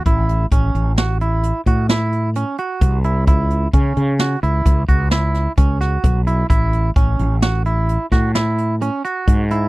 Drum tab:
HH |xxxxxxxxxxxxxx|xxxxxxxxxxxxxx|xxxxxxxxxxxxxx|
SD |----o---o-----|----o---oo-o--|----o--oo-----|
BD |o-o----o----o-|o-o---oo--o-o-|o-o----o----o-|